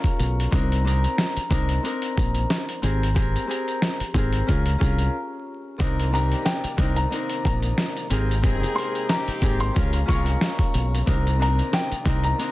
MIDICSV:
0, 0, Header, 1, 8, 480
1, 0, Start_track
1, 0, Key_signature, -3, "minor"
1, 0, Tempo, 659341
1, 381, Time_signature, 4, 2, 24, 8
1, 9112, End_track
2, 0, Start_track
2, 0, Title_t, "Upright piano"
2, 0, Program_c, 0, 0
2, 0, Note_on_c, 0, 85, 70
2, 351, Note_off_c, 0, 85, 0
2, 4467, Note_on_c, 0, 82, 79
2, 4680, Note_off_c, 0, 82, 0
2, 4698, Note_on_c, 0, 79, 78
2, 5048, Note_off_c, 0, 79, 0
2, 5070, Note_on_c, 0, 82, 73
2, 5399, Note_off_c, 0, 82, 0
2, 5426, Note_on_c, 0, 82, 72
2, 5639, Note_off_c, 0, 82, 0
2, 6375, Note_on_c, 0, 84, 79
2, 6594, Note_off_c, 0, 84, 0
2, 6628, Note_on_c, 0, 82, 84
2, 6973, Note_off_c, 0, 82, 0
2, 6991, Note_on_c, 0, 84, 78
2, 7320, Note_off_c, 0, 84, 0
2, 7340, Note_on_c, 0, 85, 76
2, 8031, Note_off_c, 0, 85, 0
2, 8313, Note_on_c, 0, 82, 89
2, 8524, Note_off_c, 0, 82, 0
2, 8546, Note_on_c, 0, 79, 86
2, 8892, Note_off_c, 0, 79, 0
2, 8914, Note_on_c, 0, 82, 73
2, 9112, Note_off_c, 0, 82, 0
2, 9112, End_track
3, 0, Start_track
3, 0, Title_t, "Harp"
3, 0, Program_c, 1, 46
3, 0, Note_on_c, 1, 61, 95
3, 0, Note_on_c, 1, 65, 87
3, 0, Note_on_c, 1, 68, 87
3, 0, Note_on_c, 1, 70, 101
3, 370, Note_on_c, 1, 60, 101
3, 377, Note_on_c, 1, 62, 87
3, 384, Note_on_c, 1, 63, 88
3, 388, Note_off_c, 1, 70, 0
3, 391, Note_on_c, 1, 70, 111
3, 413, Note_off_c, 1, 61, 0
3, 598, Note_off_c, 1, 60, 0
3, 601, Note_off_c, 1, 62, 0
3, 605, Note_off_c, 1, 63, 0
3, 608, Note_off_c, 1, 70, 0
3, 613, Note_on_c, 1, 60, 95
3, 619, Note_on_c, 1, 62, 88
3, 627, Note_on_c, 1, 63, 85
3, 633, Note_on_c, 1, 70, 113
3, 956, Note_off_c, 1, 60, 0
3, 959, Note_off_c, 1, 62, 0
3, 963, Note_off_c, 1, 63, 0
3, 966, Note_off_c, 1, 70, 0
3, 1089, Note_on_c, 1, 60, 95
3, 1095, Note_on_c, 1, 62, 88
3, 1103, Note_on_c, 1, 63, 92
3, 1109, Note_on_c, 1, 70, 110
3, 1310, Note_off_c, 1, 68, 0
3, 1317, Note_off_c, 1, 60, 0
3, 1321, Note_off_c, 1, 62, 0
3, 1324, Note_off_c, 1, 63, 0
3, 1327, Note_off_c, 1, 70, 0
3, 1332, Note_on_c, 1, 60, 96
3, 1339, Note_on_c, 1, 62, 82
3, 1346, Note_on_c, 1, 63, 79
3, 1353, Note_on_c, 1, 70, 108
3, 1485, Note_off_c, 1, 65, 0
3, 2050, Note_off_c, 1, 60, 0
3, 2053, Note_on_c, 1, 60, 96
3, 2060, Note_on_c, 1, 67, 84
3, 2067, Note_on_c, 1, 68, 87
3, 2071, Note_off_c, 1, 70, 0
3, 2073, Note_on_c, 1, 70, 99
3, 2211, Note_off_c, 1, 60, 0
3, 2214, Note_off_c, 1, 67, 0
3, 2218, Note_off_c, 1, 68, 0
3, 2221, Note_off_c, 1, 70, 0
3, 2289, Note_on_c, 1, 60, 99
3, 2296, Note_on_c, 1, 67, 90
3, 2302, Note_on_c, 1, 68, 90
3, 2309, Note_on_c, 1, 70, 109
3, 2517, Note_off_c, 1, 60, 0
3, 2521, Note_off_c, 1, 67, 0
3, 2524, Note_off_c, 1, 68, 0
3, 2527, Note_off_c, 1, 70, 0
3, 2527, Note_on_c, 1, 60, 105
3, 2534, Note_on_c, 1, 67, 81
3, 2541, Note_on_c, 1, 68, 90
3, 2548, Note_on_c, 1, 70, 105
3, 2873, Note_off_c, 1, 60, 0
3, 2877, Note_off_c, 1, 67, 0
3, 2880, Note_off_c, 1, 68, 0
3, 2884, Note_off_c, 1, 70, 0
3, 3015, Note_on_c, 1, 60, 102
3, 3021, Note_on_c, 1, 67, 89
3, 3028, Note_on_c, 1, 68, 96
3, 3035, Note_on_c, 1, 70, 100
3, 3252, Note_on_c, 1, 61, 93
3, 3257, Note_off_c, 1, 68, 0
3, 3258, Note_off_c, 1, 60, 0
3, 3258, Note_on_c, 1, 65, 85
3, 3261, Note_off_c, 1, 67, 0
3, 3264, Note_off_c, 1, 70, 0
3, 3266, Note_on_c, 1, 68, 85
3, 3273, Note_on_c, 1, 70, 103
3, 3295, Note_off_c, 1, 62, 0
3, 3314, Note_off_c, 1, 63, 0
3, 3410, Note_off_c, 1, 61, 0
3, 3413, Note_off_c, 1, 65, 0
3, 3417, Note_off_c, 1, 68, 0
3, 3421, Note_off_c, 1, 70, 0
3, 3482, Note_on_c, 1, 61, 96
3, 3490, Note_on_c, 1, 65, 86
3, 3496, Note_on_c, 1, 68, 89
3, 3503, Note_on_c, 1, 70, 102
3, 3731, Note_off_c, 1, 61, 0
3, 3736, Note_off_c, 1, 65, 0
3, 3738, Note_off_c, 1, 68, 0
3, 3742, Note_off_c, 1, 70, 0
3, 4212, Note_on_c, 1, 60, 95
3, 4219, Note_on_c, 1, 62, 85
3, 4227, Note_on_c, 1, 63, 88
3, 4233, Note_on_c, 1, 70, 109
3, 4439, Note_off_c, 1, 60, 0
3, 4442, Note_off_c, 1, 62, 0
3, 4446, Note_off_c, 1, 63, 0
3, 4450, Note_off_c, 1, 70, 0
3, 4455, Note_on_c, 1, 60, 92
3, 4463, Note_on_c, 1, 62, 89
3, 4469, Note_on_c, 1, 63, 88
3, 4475, Note_on_c, 1, 70, 112
3, 4797, Note_off_c, 1, 60, 0
3, 4801, Note_off_c, 1, 62, 0
3, 4804, Note_off_c, 1, 63, 0
3, 4807, Note_off_c, 1, 70, 0
3, 4928, Note_on_c, 1, 60, 96
3, 4935, Note_on_c, 1, 62, 87
3, 4941, Note_on_c, 1, 63, 93
3, 4949, Note_on_c, 1, 70, 111
3, 5157, Note_off_c, 1, 60, 0
3, 5160, Note_off_c, 1, 62, 0
3, 5164, Note_off_c, 1, 63, 0
3, 5167, Note_off_c, 1, 70, 0
3, 5173, Note_on_c, 1, 60, 91
3, 5180, Note_on_c, 1, 62, 82
3, 5187, Note_on_c, 1, 63, 84
3, 5193, Note_on_c, 1, 70, 104
3, 5891, Note_off_c, 1, 60, 0
3, 5894, Note_on_c, 1, 60, 95
3, 5901, Note_on_c, 1, 67, 84
3, 5908, Note_on_c, 1, 68, 91
3, 5912, Note_off_c, 1, 70, 0
3, 5915, Note_on_c, 1, 70, 98
3, 6051, Note_off_c, 1, 60, 0
3, 6055, Note_off_c, 1, 67, 0
3, 6058, Note_off_c, 1, 68, 0
3, 6062, Note_off_c, 1, 70, 0
3, 6129, Note_on_c, 1, 60, 99
3, 6137, Note_on_c, 1, 67, 95
3, 6144, Note_on_c, 1, 68, 88
3, 6150, Note_on_c, 1, 70, 103
3, 6357, Note_off_c, 1, 60, 0
3, 6361, Note_off_c, 1, 67, 0
3, 6365, Note_off_c, 1, 68, 0
3, 6366, Note_on_c, 1, 60, 100
3, 6368, Note_off_c, 1, 70, 0
3, 6373, Note_on_c, 1, 67, 80
3, 6380, Note_on_c, 1, 68, 89
3, 6387, Note_on_c, 1, 70, 111
3, 6713, Note_off_c, 1, 60, 0
3, 6716, Note_off_c, 1, 67, 0
3, 6720, Note_off_c, 1, 68, 0
3, 6723, Note_off_c, 1, 70, 0
3, 6853, Note_on_c, 1, 60, 98
3, 6860, Note_on_c, 1, 67, 92
3, 6867, Note_on_c, 1, 68, 99
3, 6875, Note_on_c, 1, 70, 100
3, 7090, Note_on_c, 1, 61, 91
3, 7095, Note_off_c, 1, 68, 0
3, 7096, Note_on_c, 1, 65, 86
3, 7097, Note_off_c, 1, 60, 0
3, 7100, Note_off_c, 1, 67, 0
3, 7102, Note_off_c, 1, 70, 0
3, 7103, Note_on_c, 1, 68, 87
3, 7110, Note_on_c, 1, 70, 99
3, 7134, Note_off_c, 1, 62, 0
3, 7156, Note_off_c, 1, 63, 0
3, 7249, Note_off_c, 1, 61, 0
3, 7252, Note_off_c, 1, 65, 0
3, 7256, Note_off_c, 1, 68, 0
3, 7260, Note_off_c, 1, 70, 0
3, 7320, Note_on_c, 1, 61, 97
3, 7327, Note_on_c, 1, 65, 85
3, 7335, Note_on_c, 1, 68, 88
3, 7341, Note_on_c, 1, 70, 101
3, 8051, Note_on_c, 1, 60, 100
3, 8058, Note_on_c, 1, 62, 86
3, 8064, Note_on_c, 1, 63, 88
3, 8068, Note_off_c, 1, 70, 0
3, 8071, Note_on_c, 1, 70, 107
3, 8095, Note_off_c, 1, 61, 0
3, 8278, Note_off_c, 1, 60, 0
3, 8282, Note_off_c, 1, 62, 0
3, 8285, Note_off_c, 1, 63, 0
3, 8289, Note_off_c, 1, 70, 0
3, 8291, Note_on_c, 1, 60, 91
3, 8299, Note_on_c, 1, 62, 88
3, 8305, Note_on_c, 1, 63, 89
3, 8312, Note_on_c, 1, 70, 109
3, 8635, Note_off_c, 1, 60, 0
3, 8639, Note_off_c, 1, 62, 0
3, 8642, Note_off_c, 1, 63, 0
3, 8646, Note_off_c, 1, 70, 0
3, 8769, Note_on_c, 1, 60, 96
3, 8775, Note_on_c, 1, 62, 91
3, 8783, Note_on_c, 1, 63, 94
3, 8790, Note_on_c, 1, 70, 112
3, 8990, Note_off_c, 1, 68, 0
3, 8998, Note_off_c, 1, 60, 0
3, 9001, Note_off_c, 1, 62, 0
3, 9004, Note_off_c, 1, 63, 0
3, 9008, Note_off_c, 1, 70, 0
3, 9015, Note_on_c, 1, 60, 92
3, 9022, Note_on_c, 1, 62, 84
3, 9028, Note_on_c, 1, 63, 85
3, 9035, Note_on_c, 1, 70, 112
3, 9112, Note_off_c, 1, 60, 0
3, 9112, Note_off_c, 1, 62, 0
3, 9112, Note_off_c, 1, 63, 0
3, 9112, Note_off_c, 1, 65, 0
3, 9112, Note_off_c, 1, 70, 0
3, 9112, End_track
4, 0, Start_track
4, 0, Title_t, "Horn section"
4, 0, Program_c, 2, 61
4, 4355, Note_on_c, 2, 62, 81
4, 4356, Note_on_c, 2, 58, 79
4, 4356, Note_on_c, 2, 65, 87
4, 4441, Note_off_c, 2, 62, 0
4, 4442, Note_off_c, 2, 58, 0
4, 4442, Note_off_c, 2, 65, 0
4, 4468, Note_on_c, 2, 63, 78
4, 4468, Note_on_c, 2, 67, 89
4, 4469, Note_on_c, 2, 55, 84
4, 4916, Note_off_c, 2, 55, 0
4, 4916, Note_off_c, 2, 63, 0
4, 4916, Note_off_c, 2, 67, 0
4, 6140, Note_on_c, 2, 60, 98
4, 6140, Note_on_c, 2, 63, 103
4, 6140, Note_on_c, 2, 68, 115
4, 6591, Note_off_c, 2, 63, 0
4, 6591, Note_off_c, 2, 68, 0
4, 6592, Note_off_c, 2, 60, 0
4, 6630, Note_on_c, 2, 63, 125
4, 6631, Note_on_c, 2, 60, 114
4, 6631, Note_on_c, 2, 67, 127
4, 7077, Note_off_c, 2, 63, 0
4, 7077, Note_off_c, 2, 67, 0
4, 7078, Note_off_c, 2, 60, 0
4, 7109, Note_on_c, 2, 61, 88
4, 7110, Note_on_c, 2, 58, 82
4, 7110, Note_on_c, 2, 65, 96
4, 7298, Note_off_c, 2, 58, 0
4, 7298, Note_off_c, 2, 61, 0
4, 7298, Note_off_c, 2, 65, 0
4, 7341, Note_on_c, 2, 65, 100
4, 7342, Note_on_c, 2, 58, 86
4, 7342, Note_on_c, 2, 61, 80
4, 7533, Note_off_c, 2, 58, 0
4, 7533, Note_off_c, 2, 61, 0
4, 7533, Note_off_c, 2, 65, 0
4, 9112, End_track
5, 0, Start_track
5, 0, Title_t, "Tonewheel organ"
5, 0, Program_c, 3, 16
5, 4206, Note_on_c, 3, 48, 72
5, 4207, Note_on_c, 3, 51, 63
5, 4207, Note_on_c, 3, 58, 67
5, 4207, Note_on_c, 3, 74, 78
5, 5877, Note_off_c, 3, 51, 0
5, 5877, Note_off_c, 3, 58, 0
5, 5877, Note_off_c, 3, 74, 0
5, 5897, Note_on_c, 3, 56, 62
5, 5897, Note_on_c, 3, 58, 70
5, 5897, Note_on_c, 3, 79, 74
5, 7065, Note_off_c, 3, 48, 0
5, 7081, Note_off_c, 3, 58, 0
5, 7087, Note_off_c, 3, 79, 0
5, 7089, Note_on_c, 3, 58, 67
5, 7089, Note_on_c, 3, 61, 66
5, 7089, Note_on_c, 3, 65, 80
5, 8037, Note_off_c, 3, 56, 0
5, 8045, Note_off_c, 3, 61, 0
5, 8045, Note_off_c, 3, 65, 0
5, 8050, Note_on_c, 3, 48, 67
5, 8051, Note_on_c, 3, 51, 70
5, 8051, Note_on_c, 3, 74, 87
5, 9112, Note_off_c, 3, 48, 0
5, 9112, Note_off_c, 3, 51, 0
5, 9112, Note_off_c, 3, 58, 0
5, 9112, Note_off_c, 3, 74, 0
5, 9112, End_track
6, 0, Start_track
6, 0, Title_t, "Fingered electric bass"
6, 0, Program_c, 4, 33
6, 143, Note_on_c, 4, 35, 91
6, 335, Note_off_c, 4, 35, 0
6, 383, Note_on_c, 4, 36, 106
6, 767, Note_off_c, 4, 36, 0
6, 1098, Note_on_c, 4, 36, 92
6, 1291, Note_off_c, 4, 36, 0
6, 1584, Note_on_c, 4, 34, 98
6, 1775, Note_off_c, 4, 34, 0
6, 2064, Note_on_c, 4, 32, 97
6, 2447, Note_off_c, 4, 32, 0
6, 3018, Note_on_c, 4, 32, 99
6, 3211, Note_off_c, 4, 32, 0
6, 3268, Note_on_c, 4, 37, 107
6, 3457, Note_off_c, 4, 37, 0
6, 3505, Note_on_c, 4, 36, 93
6, 3696, Note_off_c, 4, 36, 0
6, 4223, Note_on_c, 4, 36, 102
6, 4607, Note_off_c, 4, 36, 0
6, 4938, Note_on_c, 4, 36, 88
6, 5132, Note_off_c, 4, 36, 0
6, 5425, Note_on_c, 4, 34, 96
6, 5616, Note_off_c, 4, 34, 0
6, 5902, Note_on_c, 4, 32, 99
6, 6286, Note_off_c, 4, 32, 0
6, 6858, Note_on_c, 4, 32, 100
6, 7052, Note_off_c, 4, 32, 0
6, 7109, Note_on_c, 4, 37, 113
6, 7298, Note_off_c, 4, 37, 0
6, 7344, Note_on_c, 4, 36, 93
6, 7535, Note_off_c, 4, 36, 0
6, 7824, Note_on_c, 4, 35, 90
6, 8015, Note_off_c, 4, 35, 0
6, 8062, Note_on_c, 4, 36, 107
6, 8446, Note_off_c, 4, 36, 0
6, 8778, Note_on_c, 4, 36, 97
6, 8971, Note_off_c, 4, 36, 0
6, 9112, End_track
7, 0, Start_track
7, 0, Title_t, "Muted fingered electric bass strokes"
7, 995, Note_on_c, 9, 29, 48
7, 1067, Note_off_c, 9, 29, 0
7, 2914, Note_on_c, 9, 29, 46
7, 2987, Note_off_c, 9, 29, 0
7, 4834, Note_on_c, 9, 29, 48
7, 4907, Note_off_c, 9, 29, 0
7, 6754, Note_on_c, 9, 29, 46
7, 6826, Note_off_c, 9, 29, 0
7, 8675, Note_on_c, 9, 29, 47
7, 8748, Note_off_c, 9, 29, 0
7, 9112, End_track
8, 0, Start_track
8, 0, Title_t, "Drums"
8, 29, Note_on_c, 9, 36, 101
8, 38, Note_on_c, 9, 42, 50
8, 102, Note_off_c, 9, 36, 0
8, 111, Note_off_c, 9, 42, 0
8, 141, Note_on_c, 9, 42, 82
8, 214, Note_off_c, 9, 42, 0
8, 290, Note_on_c, 9, 42, 59
8, 363, Note_off_c, 9, 42, 0
8, 381, Note_on_c, 9, 36, 110
8, 385, Note_on_c, 9, 42, 99
8, 454, Note_off_c, 9, 36, 0
8, 458, Note_off_c, 9, 42, 0
8, 525, Note_on_c, 9, 42, 55
8, 597, Note_off_c, 9, 42, 0
8, 635, Note_on_c, 9, 42, 72
8, 708, Note_off_c, 9, 42, 0
8, 758, Note_on_c, 9, 42, 47
8, 831, Note_off_c, 9, 42, 0
8, 861, Note_on_c, 9, 38, 121
8, 867, Note_on_c, 9, 42, 78
8, 934, Note_off_c, 9, 38, 0
8, 940, Note_off_c, 9, 42, 0
8, 995, Note_on_c, 9, 42, 55
8, 1068, Note_off_c, 9, 42, 0
8, 1097, Note_on_c, 9, 36, 98
8, 1102, Note_on_c, 9, 42, 81
8, 1169, Note_off_c, 9, 36, 0
8, 1175, Note_off_c, 9, 42, 0
8, 1229, Note_on_c, 9, 42, 54
8, 1302, Note_off_c, 9, 42, 0
8, 1345, Note_on_c, 9, 42, 95
8, 1418, Note_off_c, 9, 42, 0
8, 1470, Note_on_c, 9, 42, 62
8, 1543, Note_off_c, 9, 42, 0
8, 1583, Note_on_c, 9, 36, 101
8, 1594, Note_on_c, 9, 42, 78
8, 1656, Note_off_c, 9, 36, 0
8, 1667, Note_off_c, 9, 42, 0
8, 1708, Note_on_c, 9, 42, 54
8, 1781, Note_off_c, 9, 42, 0
8, 1821, Note_on_c, 9, 38, 122
8, 1834, Note_on_c, 9, 42, 96
8, 1894, Note_off_c, 9, 38, 0
8, 1906, Note_off_c, 9, 42, 0
8, 1956, Note_on_c, 9, 42, 51
8, 2029, Note_off_c, 9, 42, 0
8, 2060, Note_on_c, 9, 42, 86
8, 2133, Note_off_c, 9, 42, 0
8, 2208, Note_on_c, 9, 42, 60
8, 2281, Note_off_c, 9, 42, 0
8, 2301, Note_on_c, 9, 36, 113
8, 2304, Note_on_c, 9, 42, 96
8, 2374, Note_off_c, 9, 36, 0
8, 2377, Note_off_c, 9, 42, 0
8, 2444, Note_on_c, 9, 42, 58
8, 2517, Note_off_c, 9, 42, 0
8, 2555, Note_on_c, 9, 42, 75
8, 2628, Note_off_c, 9, 42, 0
8, 2678, Note_on_c, 9, 42, 46
8, 2750, Note_off_c, 9, 42, 0
8, 2782, Note_on_c, 9, 38, 124
8, 2788, Note_on_c, 9, 42, 77
8, 2854, Note_off_c, 9, 38, 0
8, 2861, Note_off_c, 9, 42, 0
8, 2914, Note_on_c, 9, 42, 57
8, 2987, Note_off_c, 9, 42, 0
8, 3016, Note_on_c, 9, 36, 96
8, 3022, Note_on_c, 9, 42, 78
8, 3089, Note_off_c, 9, 36, 0
8, 3095, Note_off_c, 9, 42, 0
8, 3149, Note_on_c, 9, 42, 56
8, 3221, Note_off_c, 9, 42, 0
8, 3266, Note_on_c, 9, 42, 102
8, 3267, Note_on_c, 9, 36, 102
8, 3338, Note_off_c, 9, 42, 0
8, 3340, Note_off_c, 9, 36, 0
8, 3390, Note_on_c, 9, 42, 64
8, 3463, Note_off_c, 9, 42, 0
8, 3503, Note_on_c, 9, 36, 99
8, 3514, Note_on_c, 9, 42, 78
8, 3576, Note_off_c, 9, 36, 0
8, 3587, Note_off_c, 9, 42, 0
8, 3629, Note_on_c, 9, 42, 54
8, 3702, Note_off_c, 9, 42, 0
8, 4222, Note_on_c, 9, 36, 116
8, 4225, Note_on_c, 9, 42, 99
8, 4294, Note_off_c, 9, 36, 0
8, 4298, Note_off_c, 9, 42, 0
8, 4365, Note_on_c, 9, 42, 55
8, 4438, Note_off_c, 9, 42, 0
8, 4476, Note_on_c, 9, 42, 75
8, 4549, Note_off_c, 9, 42, 0
8, 4598, Note_on_c, 9, 42, 46
8, 4671, Note_off_c, 9, 42, 0
8, 4702, Note_on_c, 9, 38, 119
8, 4708, Note_on_c, 9, 42, 79
8, 4774, Note_off_c, 9, 38, 0
8, 4781, Note_off_c, 9, 42, 0
8, 4834, Note_on_c, 9, 42, 56
8, 4907, Note_off_c, 9, 42, 0
8, 4937, Note_on_c, 9, 36, 97
8, 4942, Note_on_c, 9, 42, 80
8, 5010, Note_off_c, 9, 36, 0
8, 5015, Note_off_c, 9, 42, 0
8, 5070, Note_on_c, 9, 42, 53
8, 5142, Note_off_c, 9, 42, 0
8, 5185, Note_on_c, 9, 42, 96
8, 5258, Note_off_c, 9, 42, 0
8, 5311, Note_on_c, 9, 42, 61
8, 5384, Note_off_c, 9, 42, 0
8, 5424, Note_on_c, 9, 36, 100
8, 5435, Note_on_c, 9, 42, 76
8, 5497, Note_off_c, 9, 36, 0
8, 5507, Note_off_c, 9, 42, 0
8, 5550, Note_on_c, 9, 42, 53
8, 5623, Note_off_c, 9, 42, 0
8, 5662, Note_on_c, 9, 38, 123
8, 5674, Note_on_c, 9, 42, 96
8, 5734, Note_off_c, 9, 38, 0
8, 5747, Note_off_c, 9, 42, 0
8, 5798, Note_on_c, 9, 42, 50
8, 5871, Note_off_c, 9, 42, 0
8, 5900, Note_on_c, 9, 42, 84
8, 5973, Note_off_c, 9, 42, 0
8, 6050, Note_on_c, 9, 42, 59
8, 6123, Note_off_c, 9, 42, 0
8, 6142, Note_on_c, 9, 36, 111
8, 6145, Note_on_c, 9, 42, 97
8, 6214, Note_off_c, 9, 36, 0
8, 6218, Note_off_c, 9, 42, 0
8, 6285, Note_on_c, 9, 42, 55
8, 6358, Note_off_c, 9, 42, 0
8, 6395, Note_on_c, 9, 42, 76
8, 6468, Note_off_c, 9, 42, 0
8, 6518, Note_on_c, 9, 42, 47
8, 6590, Note_off_c, 9, 42, 0
8, 6620, Note_on_c, 9, 38, 117
8, 6627, Note_on_c, 9, 42, 80
8, 6693, Note_off_c, 9, 38, 0
8, 6699, Note_off_c, 9, 42, 0
8, 6754, Note_on_c, 9, 42, 56
8, 6827, Note_off_c, 9, 42, 0
8, 6857, Note_on_c, 9, 36, 99
8, 6861, Note_on_c, 9, 42, 83
8, 6930, Note_off_c, 9, 36, 0
8, 6934, Note_off_c, 9, 42, 0
8, 6989, Note_on_c, 9, 42, 52
8, 7062, Note_off_c, 9, 42, 0
8, 7105, Note_on_c, 9, 42, 96
8, 7107, Note_on_c, 9, 36, 105
8, 7178, Note_off_c, 9, 42, 0
8, 7180, Note_off_c, 9, 36, 0
8, 7229, Note_on_c, 9, 42, 64
8, 7301, Note_off_c, 9, 42, 0
8, 7343, Note_on_c, 9, 36, 101
8, 7354, Note_on_c, 9, 42, 75
8, 7416, Note_off_c, 9, 36, 0
8, 7427, Note_off_c, 9, 42, 0
8, 7469, Note_on_c, 9, 42, 55
8, 7542, Note_off_c, 9, 42, 0
8, 7581, Note_on_c, 9, 38, 116
8, 7593, Note_on_c, 9, 42, 96
8, 7653, Note_off_c, 9, 38, 0
8, 7666, Note_off_c, 9, 42, 0
8, 7708, Note_on_c, 9, 36, 101
8, 7716, Note_on_c, 9, 42, 50
8, 7781, Note_off_c, 9, 36, 0
8, 7788, Note_off_c, 9, 42, 0
8, 7820, Note_on_c, 9, 42, 84
8, 7893, Note_off_c, 9, 42, 0
8, 7968, Note_on_c, 9, 42, 59
8, 8041, Note_off_c, 9, 42, 0
8, 8061, Note_on_c, 9, 36, 115
8, 8064, Note_on_c, 9, 42, 100
8, 8134, Note_off_c, 9, 36, 0
8, 8136, Note_off_c, 9, 42, 0
8, 8203, Note_on_c, 9, 42, 54
8, 8276, Note_off_c, 9, 42, 0
8, 8315, Note_on_c, 9, 42, 71
8, 8388, Note_off_c, 9, 42, 0
8, 8437, Note_on_c, 9, 42, 46
8, 8510, Note_off_c, 9, 42, 0
8, 8540, Note_on_c, 9, 38, 120
8, 8547, Note_on_c, 9, 42, 77
8, 8613, Note_off_c, 9, 38, 0
8, 8619, Note_off_c, 9, 42, 0
8, 8674, Note_on_c, 9, 42, 54
8, 8747, Note_off_c, 9, 42, 0
8, 8776, Note_on_c, 9, 36, 98
8, 8782, Note_on_c, 9, 42, 77
8, 8849, Note_off_c, 9, 36, 0
8, 8854, Note_off_c, 9, 42, 0
8, 8907, Note_on_c, 9, 42, 55
8, 8980, Note_off_c, 9, 42, 0
8, 9024, Note_on_c, 9, 42, 99
8, 9097, Note_off_c, 9, 42, 0
8, 9112, End_track
0, 0, End_of_file